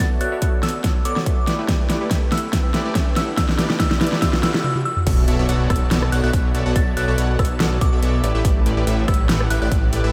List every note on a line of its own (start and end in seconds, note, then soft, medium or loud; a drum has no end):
0.00 0.18 B3 medium
0.00 0.18 F#4 medium
0.00 0.18 A4 medium
0.00 0.18 C#5 medium
0.00 0.18 D5 medium
0.00 0.18 E5 medium
0.00 0.15 A6 medium
0.00 riser medium
0.21 0.30 B3 medium
0.21 0.30 F#4 medium
0.21 0.30 A4 medium
0.21 0.30 C#5 medium
0.21 0.30 D5 medium
0.21 0.30 E5 medium
0.21 0.36 F#6 medium
0.21 closed hi-hat medium
0.32 0.40 B3 medium
0.32 0.40 F#4 medium
0.32 0.40 A4 medium
0.32 0.40 C#5 medium
0.32 0.40 D5 medium
0.32 0.40 E5 medium
0.42 0.61 B3 medium
0.42 0.61 F#4 medium
0.42 0.61 A4 medium
0.42 0.61 C#5 medium
0.42 0.61 D5 medium
0.42 0.61 F#5 loud
0.42 kick medium
0.42 closed hi-hat medium
0.63 0.82 B3 medium
0.63 0.82 F#4 medium
0.63 0.82 A4 medium
0.63 0.82 C#5 medium
0.63 0.82 D5 medium
0.63 0.82 A5 medium
0.63 0.79 E6 medium
0.63 snare medium
0.63 closed hi-hat medium
0.69 closed hi-hat medium
0.84 1.03 B3 medium
0.84 1.03 F#4 medium
0.84 1.03 A4 medium
0.84 1.03 C#5 medium
0.84 1.03 D5 medium
0.84 1.03 A5 medium
0.84 kick loud
0.84 snare medium
0.84 closed hi-hat medium
1.05 1.14 B3 medium
1.05 1.14 F#4 medium
1.05 1.14 A4 medium
1.05 1.14 C#5 medium
1.05 1.14 D5 medium
1.05 1.14 F#5 medium
1.05 1.52 D6 medium
1.05 closed hi-hat medium
1.16 1.24 B3 medium
1.16 1.24 F#4 medium
1.16 1.24 A4 medium
1.16 1.24 C#5 medium
1.16 1.24 D5 medium
1.16 1.24 E5 medium
1.16 snare medium
1.26 1.45 B3 medium
1.26 1.45 F#4 medium
1.26 1.45 A4 medium
1.26 1.45 C#5 medium
1.26 1.45 D5 medium
1.26 1.45 E5 medium
1.26 kick medium
1.26 closed hi-hat medium
1.47 1.56 A3 medium
1.47 1.56 E4 medium
1.47 1.56 G4 medium
1.47 1.56 B4 medium
1.47 1.56 D5 medium
1.47 snare medium
1.47 closed hi-hat medium
1.59 1.66 A3 medium
1.59 1.66 E4 medium
1.59 1.66 G4 medium
1.59 1.66 B4 medium
1.59 1.66 E5 loud
1.69 1.87 A3 medium
1.69 1.87 G4 medium
1.69 1.87 B4 medium
1.69 1.87 D5 medium
1.69 kick medium
1.69 snare medium
1.69 closed hi-hat medium
1.90 1.99 A3 medium
1.90 1.99 E4 medium
1.90 1.99 G4 medium
1.90 1.99 B4 medium
1.90 1.99 D5 medium
1.90 snare medium
1.90 closed hi-hat medium
2.01 2.09 A3 medium
2.01 2.09 E4 medium
2.01 2.09 G4 medium
2.01 2.09 B4 medium
2.01 2.09 D5 medium
2.11 2.30 A3 medium
2.11 2.30 E4 medium
2.11 2.30 G4 medium
2.11 2.30 B4 medium
2.11 2.30 E5 medium
2.11 kick medium
2.11 snare medium
2.11 closed hi-hat medium
2.32 2.51 A3 medium
2.32 2.51 E4 medium
2.32 2.51 G4 medium
2.32 2.51 B4 medium
2.32 2.51 F#5 medium
2.32 2.48 E6 medium
2.32 snare medium
2.32 closed hi-hat medium
2.38 closed hi-hat medium
2.53 2.72 A3 medium
2.53 2.72 E4 medium
2.53 2.72 G4 medium
2.53 2.72 B4 medium
2.53 2.72 D5 medium
2.53 kick medium
2.53 snare medium
2.53 closed hi-hat medium
2.74 2.84 A3 medium
2.74 2.84 E4 medium
2.74 2.84 G4 medium
2.74 2.84 B4 medium
2.74 2.84 D5 medium
2.74 snare medium
2.74 closed hi-hat medium
2.85 2.93 A3 medium
2.85 2.93 E4 medium
2.85 2.93 G4 medium
2.85 2.93 B4 medium
2.85 2.93 D5 medium
2.95 kick medium
2.95 snare medium
2.95 closed hi-hat medium
3.16 3.35 A3 medium
3.16 3.35 E4 medium
3.16 3.35 G4 medium
3.16 3.35 B4 medium
3.16 3.35 F#5 medium
3.16 3.32 E6 medium
3.16 snare medium
3.16 closed hi-hat medium
3.38 3.56 E4 medium
3.38 3.56 G4 medium
3.38 3.56 B4 medium
3.38 3.56 D5 medium
3.38 3.53 E6 medium
3.38 kick loud
3.38 snare medium
3.38 closed hi-hat medium
3.49 snare medium
3.59 3.68 A3 medium
3.59 3.68 E4 medium
3.59 3.68 G4 medium
3.59 3.68 B4 medium
3.59 3.68 D5 medium
3.59 snare loud
3.59 closed hi-hat medium
3.70 3.78 A3 medium
3.70 3.78 E4 medium
3.70 3.78 G4 medium
3.70 3.78 B4 medium
3.70 3.78 D5 medium
3.70 snare medium
3.80 3.99 A3 medium
3.80 3.99 E4 medium
3.80 3.99 G4 medium
3.80 3.99 B4 medium
3.80 3.99 D5 medium
3.80 3.96 E6 medium
3.80 kick medium
3.80 snare loud
3.80 closed hi-hat medium
3.91 snare medium
4.01 4.11 A3 medium
4.01 4.11 E4 medium
4.01 4.11 G4 medium
4.01 4.11 B4 medium
4.01 4.11 D5 medium
4.01 snare loud
4.01 closed hi-hat soft
4.07 closed hi-hat medium
4.12 4.20 A3 medium
4.12 4.20 E4 medium
4.12 4.20 G4 medium
4.12 4.20 B4 medium
4.12 4.20 D5 loud
4.12 snare medium
4.22 4.41 A3 medium
4.22 4.41 E4 medium
4.22 4.41 G4 medium
4.22 4.41 B4 medium
4.22 4.41 D5 medium
4.22 4.38 E6 medium
4.22 kick loud
4.22 snare loud
4.22 closed hi-hat medium
4.33 snare medium
4.43 4.62 A3 medium
4.43 4.62 E4 medium
4.43 4.62 G4 medium
4.43 4.62 B4 medium
4.43 4.62 D5 medium
4.43 4.59 E6 loud
4.43 snare loud
4.43 closed hi-hat medium
4.54 snare medium
4.64 4.80 E6 medium
4.64 high tom medium
4.76 high tom medium
4.85 5.01 E6 loud
4.97 mid tom medium
5.07 5.26 B1 medium
5.07 5.25 B3 medium
5.07 5.25 F#4 medium
5.07 5.25 A4 medium
5.07 5.25 C#5 medium
5.07 5.25 D5 medium
5.07 5.25 E5 medium
5.07 kick loud
5.07 closed hi-hat medium
5.07 crash loud
5.07 impact medium
5.28 5.37 B1 loud
5.28 5.37 B3 medium
5.28 5.37 F#4 medium
5.28 5.37 A4 medium
5.28 5.37 C#5 medium
5.28 5.37 D5 medium
5.28 5.37 E5 loud
5.28 closed hi-hat medium
5.39 5.47 B1 loud
5.39 5.47 B3 medium
5.39 5.47 F#4 medium
5.39 5.47 A4 medium
5.39 5.47 C#5 medium
5.39 5.47 D5 medium
5.39 5.47 E5 medium
5.49 5.68 B1 loud
5.49 5.68 B3 loud
5.49 5.68 F#4 medium
5.49 5.68 A4 medium
5.49 5.68 C#5 medium
5.49 5.68 D5 medium
5.49 5.68 F#5 loud
5.49 closed hi-hat medium
5.70 5.89 B1 loud
5.70 5.89 F#4 medium
5.70 5.89 A4 medium
5.70 5.89 C#5 medium
5.70 5.89 D5 medium
5.70 5.89 A5 medium
5.70 5.86 E6 medium
5.70 kick loud
5.70 cross-stick medium
5.70 closed hi-hat medium
5.76 closed hi-hat medium
5.91 6.10 B1 loud
5.91 6.10 B3 medium
5.91 6.10 F#4 medium
5.91 6.10 A4 medium
5.91 6.10 C#5 medium
5.91 6.10 D5 medium
5.91 6.10 A5 medium
5.91 snare loud
5.91 closed hi-hat medium
6.02 cross-stick medium
6.12 6.21 B1 medium
6.12 6.21 B3 medium
6.12 6.21 F#4 medium
6.12 6.21 A4 medium
6.12 6.21 C#5 medium
6.12 6.21 D5 medium
6.12 6.21 F#5 medium
6.12 6.20 F#6 medium
6.12 closed hi-hat medium
6.24 6.31 B1 loud
6.24 6.31 B3 medium
6.24 6.31 F#4 medium
6.24 6.31 A4 medium
6.24 6.31 C#5 medium
6.24 6.31 D5 medium
6.24 6.31 E5 medium
6.24 6.30 F#6 medium
6.33 6.53 B1 medium
6.33 6.52 A4 medium
6.33 kick loud
6.33 closed hi-hat medium
6.54 6.64 B1 loud
6.54 6.63 B3 medium
6.54 6.63 F#4 medium
6.54 6.63 A4 medium
6.54 6.63 C#5 medium
6.54 6.63 D5 medium
6.54 6.63 E5 medium
6.54 closed hi-hat medium
6.66 6.74 B1 loud
6.66 6.73 B3 medium
6.66 6.73 F#4 medium
6.66 6.73 A4 medium
6.66 6.73 C#5 medium
6.66 6.73 D5 medium
6.66 6.73 F#5 loud
6.76 6.95 B1 loud
6.76 6.94 B3 medium
6.76 6.94 F#4 medium
6.76 6.94 A4 medium
6.76 6.94 C#5 medium
6.76 6.94 D5 medium
6.76 6.94 E5 medium
6.76 6.91 A6 medium
6.76 kick loud
6.76 closed hi-hat medium
6.97 7.06 B1 loud
6.97 7.06 B3 medium
6.97 7.06 F#4 medium
6.97 7.06 A4 medium
6.97 7.06 C#5 medium
6.97 7.06 D5 medium
6.97 7.06 E5 medium
6.97 7.12 F#6 medium
6.97 closed hi-hat medium
7.08 7.16 B1 medium
7.08 7.16 B3 medium
7.08 7.16 F#4 medium
7.08 7.16 A4 medium
7.08 7.16 C#5 medium
7.08 7.16 D5 medium
7.08 7.16 E5 loud
7.18 7.37 B1 loud
7.18 7.37 B3 loud
7.18 7.37 F#4 medium
7.18 7.37 A4 medium
7.18 7.37 C#5 medium
7.18 7.37 D5 medium
7.18 7.37 F#5 loud
7.18 closed hi-hat medium
7.39 7.58 B1 loud
7.39 7.58 B3 medium
7.39 7.58 F#4 medium
7.39 7.58 A4 medium
7.39 7.58 C#5 medium
7.39 7.58 D5 medium
7.39 7.58 A5 medium
7.39 7.55 E6 medium
7.39 kick loud
7.39 cross-stick medium
7.39 closed hi-hat medium
7.45 closed hi-hat medium
7.60 7.79 B1 loud
7.60 7.79 B3 medium
7.60 7.79 F#4 medium
7.60 7.79 A4 medium
7.60 7.79 C#5 medium
7.60 7.79 D5 medium
7.60 7.79 A5 medium
7.60 snare loud
7.60 closed hi-hat medium
7.81 7.90 B1 medium
7.81 7.90 B3 medium
7.81 7.90 F#4 medium
7.81 7.90 A4 medium
7.81 7.90 C#5 medium
7.81 7.90 D5 medium
7.81 7.90 F#5 medium
7.81 8.28 D6 medium
7.81 kick loud
7.81 closed hi-hat medium
7.92 8.00 B1 loud
7.92 8.00 B3 medium
7.92 8.00 F#4 medium
7.92 8.00 A4 medium
7.92 8.00 C#5 medium
7.92 8.00 D5 medium
7.92 8.00 E5 medium
8.02 8.22 B1 loud
8.02 8.21 B3 medium
8.02 8.21 F#4 medium
8.02 8.21 A4 medium
8.02 8.21 C#5 medium
8.02 8.21 D5 medium
8.02 8.21 E5 medium
8.02 closed hi-hat medium
8.23 8.33 A1 loud
8.23 8.32 A3 medium
8.23 8.32 E4 medium
8.23 8.32 G4 medium
8.23 8.32 B4 medium
8.23 8.32 D5 medium
8.23 closed hi-hat medium
8.35 8.43 A1 medium
8.35 8.42 A3 medium
8.35 8.42 E4 medium
8.35 8.42 G4 medium
8.35 8.42 B4 medium
8.35 8.42 E5 loud
8.45 8.64 A1 loud
8.45 8.63 A3 medium
8.45 8.63 E4 medium
8.45 8.63 G4 medium
8.45 8.63 B4 medium
8.45 kick loud
8.45 closed hi-hat medium
8.66 8.75 A1 loud
8.66 8.75 A3 medium
8.66 8.75 E4 medium
8.66 8.75 G4 medium
8.66 8.75 B4 medium
8.66 8.75 D5 loud
8.66 closed hi-hat medium
8.77 8.85 A1 loud
8.77 8.85 A3 medium
8.77 8.85 E4 medium
8.77 8.85 G4 medium
8.77 8.85 B4 medium
8.77 8.85 D5 loud
8.87 9.06 A1 medium
8.87 9.06 A3 loud
8.87 9.06 E4 medium
8.87 9.06 G4 medium
8.87 9.06 B4 medium
8.87 9.06 E5 loud
8.87 closed hi-hat medium
9.08 9.27 A1 loud
9.08 9.27 A3 medium
9.08 9.27 E4 medium
9.08 9.27 G4 medium
9.08 9.27 B4 medium
9.08 9.27 F#5 medium
9.08 9.24 E6 medium
9.08 kick loud
9.08 cross-stick medium
9.08 closed hi-hat medium
9.14 closed hi-hat medium
9.29 9.48 A1 loud
9.29 9.48 A3 medium
9.29 9.48 E4 medium
9.29 9.48 G4 medium
9.29 9.48 B4 medium
9.29 9.48 F#5 medium
9.29 snare loud
9.29 closed hi-hat medium
9.41 cross-stick medium
9.50 9.59 A1 medium
9.50 9.59 A3 medium
9.50 9.59 E4 medium
9.50 9.59 G4 medium
9.50 9.59 B4 medium
9.50 9.59 E5 medium
9.50 9.58 F#6 medium
9.50 closed hi-hat medium
9.62 9.70 A1 medium
9.62 9.69 A3 medium
9.62 9.69 E4 medium
9.62 9.69 G4 medium
9.62 9.69 B4 medium
9.62 9.69 D5 medium
9.62 9.68 F#6 medium
9.72 9.91 A1 loud
9.72 9.90 A3 medium
9.72 9.90 G4 medium
9.72 9.90 D5 medium
9.72 kick loud
9.72 closed hi-hat medium
9.93 10.02 A1 loud
9.93 10.01 A3 medium
9.93 10.01 E4 medium
9.93 10.01 G4 medium
9.93 10.01 B4 medium
9.93 10.01 D5 medium
9.93 closed hi-hat medium
10.04 10.12 A1 medium
10.04 10.11 A3 medium
10.04 10.11 E4 medium
10.04 10.11 G4 medium
10.04 10.11 B4 medium
10.04 10.11 E5 loud